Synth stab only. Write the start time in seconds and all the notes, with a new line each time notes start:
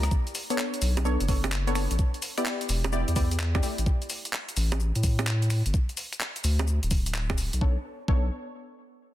0.50 B3 D4 A4 C#5
1.05 B3 D4 A4 C#5
1.28 B3 D4 A4 C#5
1.67 B3 D4 A4 C#5
1.75 B3 D4 A4 C#5
2.38 B3 E4 G4 D5
2.93 B3 E4 G4 D5
3.16 B3 E4 G4 D5
3.55 B3 E4 G4 D5
3.63 A3 E4 G4 D5
7.61 B3 D4 A4 C#5
8.08 B3 D4 A4 C#5